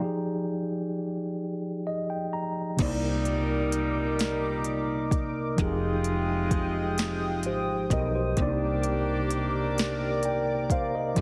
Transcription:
Already playing: D5 G5
0.00 F3 D#4 G4
0.04 G#4
1.87 D#5
2.10 G5
2.33 A#5
2.77 C2 A#2 C3 G3 A#3 D#4 A#4 D6, kick, closed hi-hat, crash
2.82 D5
3.25 closed hi-hat
3.72 closed hi-hat
4.19 snare, closed hi-hat
4.64 closed hi-hat
5.11 kick, closed hi-hat
5.56 F1 C3 F3 G#3 D#4 F4 G5 D#6, kick, closed hi-hat
5.60 G4 G#4
6.04 closed hi-hat
6.51 kick, closed hi-hat
6.98 snare, closed hi-hat
7.43 G#1 G4 C5, closed hi-hat
7.90 B1 A#4 D#5, kick, closed hi-hat
8.15 G4 C5
8.36 C2 C3 D#3 A#3 D4 G4 A#4 D5 D6, kick, closed hi-hat
8.40 D4 D5
8.47 D#4
8.83 closed hi-hat
9.31 closed hi-hat
9.78 snare, closed hi-hat
10.23 D5 G5, closed hi-hat
10.70 C5 F5, kick, closed hi-hat
10.95 A#4 D#5
11.15 F1 D#3 F3 G#3 C4 D#4 G#4 G5 D#6, kick, closed hi-hat

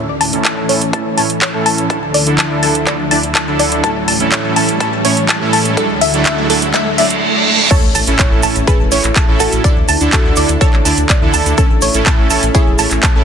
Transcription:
Already playing: A2 E3 C#4 A4, riser
0.21 A5, open hi-hat
0.33 A2 C#4 E4 A4, closed hi-hat
0.45 A5, kick, clap, closed hi-hat
0.69 A2 C#4 E4 A4 C#5, open hi-hat
0.81 closed hi-hat
0.93 A2 C#4 E4 A4 A5, kick, closed hi-hat
1.17 A2 C#4 E4 C#5 A5, open hi-hat
1.30 closed hi-hat
1.42 C#5, kick, clap, closed hi-hat
1.54 A2 C#4 E4 A4
1.66 A5, open hi-hat
1.78 closed hi-hat
1.90 D2 D3 D4 E4 A4 A5, kick, closed hi-hat
2.14 D5, open hi-hat
2.26 D3 D4 E4 A4, closed hi-hat
2.38 A5, kick, clap, closed hi-hat
2.63 D3 D4 E4 A4 A5, open hi-hat
2.75 closed hi-hat
2.87 D3 D4 E4 A4 D5, kick, clap, closed hi-hat
3.11 D3 D4 E4 D5 A5, open hi-hat
3.23 closed hi-hat
3.35 A5, kick, clap, closed hi-hat
3.47 D3 D4 E4 A4
3.59 D5, open hi-hat
3.72 closed hi-hat
3.84 A2 E3 C#4 E4 A4 A5, kick, closed hi-hat
4.08 A5, open hi-hat
4.20 A2 C#4 E4 A4, closed hi-hat
4.32 C#5, kick, clap, closed hi-hat
4.56 A2 C#4 E4 A4 A5, open hi-hat
4.69 closed hi-hat
4.80 A2 C#4 E4 A4 A5, kick, closed hi-hat
5.05 A2 C#4 E4 C#5, open hi-hat
5.17 closed hi-hat
5.29 A5, kick, clap, closed hi-hat
5.41 A2 C#4 E4 A4
5.53 A5, open hi-hat
5.65 closed hi-hat
5.77 D2 D3 F#3 A3 D4 E4 F#4 A4, kick, closed hi-hat
6.01 E5, open hi-hat
6.14 F#3 A3 D4 E4 A4, closed hi-hat
6.26 E5, kick, clap, closed hi-hat
6.50 F#3 A3 D4 E4 A4, open hi-hat
6.62 closed hi-hat
6.74 F#3 A3 D4 E4 A4 E5, kick, clap, closed hi-hat, reverse cymbal
6.98 F#3 A3 D4 E4 D5 E5, open hi-hat
7.10 closed hi-hat
7.71 A2 A3 C#4 E4 A4 C#5 A5, kick, closed hi-hat, crash, sub drop, shaker
7.83 A1
7.95 A1 A5, open hi-hat, shaker
8.06 A1 A2 C#4 E4 A4, closed hi-hat, shaker
8.19 C#5, kick, clap, closed hi-hat, shaker
8.32 A1
8.43 A1 A2 C#4 E4 A4 A5, open hi-hat, shaker
8.56 A1, closed hi-hat, shaker
8.67 A2 C#4 E4 G#4 A4 B4 A5, kick, closed hi-hat, shaker
8.80 E1
8.92 A1 A2 C#4 E4 C#5, open hi-hat, shaker
9.04 A1, clap, closed hi-hat, shaker
9.16 A5, kick, clap, closed hi-hat, shaker
9.28 A1 A2 C#4 E4 A4
9.40 A1 F#4 A4 A5, open hi-hat, shaker
9.52 A1, closed hi-hat, shaker
9.64 D3 D4 E4 A4 D5, kick, closed hi-hat, shaker
9.77 D2
9.89 D2 A5, open hi-hat, shaker
10.01 D2 D3 D4 E4 A4, closed hi-hat, shaker
10.13 F#4 A4 A5, kick, clap, closed hi-hat, shaker
10.25 D2
10.36 D2 D3 D4 E4 A4 D5, open hi-hat, shaker
10.49 D2, closed hi-hat, shaker
10.61 D3 D4 E4 A4 C#5 A5, kick, closed hi-hat, shaker
10.73 A1, clap
10.85 D2 D3 D4 E4 D5 A5, open hi-hat, shaker
10.97 D2, closed hi-hat, shaker
11.09 D5, kick, clap, closed hi-hat, shaker
11.22 D2 D3 D4 E4 A4
11.34 D2 A5, open hi-hat, shaker
11.46 D2, closed hi-hat, shaker
11.58 A2 A3 C#4 E4 A4 A5, kick, closed hi-hat, shaker
11.70 A1
11.82 A1 C#5, open hi-hat, shaker
11.94 A1 A2 C#4 E4 A4, closed hi-hat, shaker
12.06 A5, kick, clap, closed hi-hat, shaker
12.19 A1
12.30 A1 A2 C#4 E4 A4 A5, open hi-hat, shaker
12.43 A1, closed hi-hat, shaker
12.55 A2 C#4 E4 G#4 A4 C#5, kick, closed hi-hat, shaker
12.67 E1
12.79 A1 A2 C#4 E4 C#5 A5, open hi-hat, shaker
12.91 A1, clap, closed hi-hat, shaker
13.03 A5, kick, clap, closed hi-hat, shaker
13.15 A1 A2 C#4 E4 A4

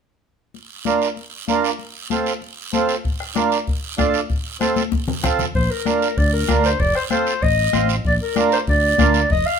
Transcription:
0.54 high conga, long guiro
0.85 D4 F4 A#4, high conga, short guiro
1.02 short guiro
1.17 high conga, long guiro
1.48 D4 F4 A#4, high conga, short guiro
1.64 short guiro
1.79 high conga, long guiro
2.10 C4 F4 A4, high conga, short guiro
2.26 short guiro
2.42 high conga, long guiro
2.73 C4 F4 A4, high conga, short guiro
2.89 short guiro
3.04 bombo low, high conga, long guiro
3.20 bombo rim
3.35 D4 F4 A#4, bombo rim, high conga, short guiro
3.52 short guiro
3.67 bombo low, high conga, long guiro
3.98 D4 F4 A4, bombo low, bombo rim, high conga, short guiro
4.14 short guiro
4.29 bombo low, high conga, long guiro
4.61 C4 F4 A4, bombo rim, high conga, short guiro
4.76 high conga, short guiro
4.92 bombo low, high conga, long guiro
5.08 low conga
5.23 C4 F4 A4, bombo low, bombo rim, low conga, short guiro
5.39 low conga, short guiro
5.54 A#1 C5, bombo low, high conga, long guiro
5.71 A#4
5.86 D4 F4 A#4, bombo rim, high conga, short guiro
6.01 A#4, short guiro
6.17 D2 D5, bombo low, high conga, long guiro
6.33 A#4
6.48 D2 D4 F4 A#4, bombo low, bombo rim, high conga, short guiro
6.64 C5, short guiro
6.80 F1 D5, bombo low, high conga, long guiro
6.95 C5, bombo rim
7.10 C4 F4 A4 C5, bombo rim, high conga, short guiro
7.27 short guiro
7.42 A1 D#5, bombo low, high conga, long guiro
7.73 A1 C4 F4 C5, bombo rim, high conga, short guiro
7.89 short guiro
8.05 A#1 D5, bombo low, high conga, long guiro
8.22 A#4
8.36 D4 F4 A#4, bombo rim, high conga, short guiro
8.52 C5, short guiro
8.67 D2 D5, bombo low, high conga, long guiro
8.98 D2 D4 F4 A#4, bombo low, bombo rim, high conga, short guiro
9.14 short guiro
9.30 F1 D#5, bombo low, high conga, long guiro
9.46 F5

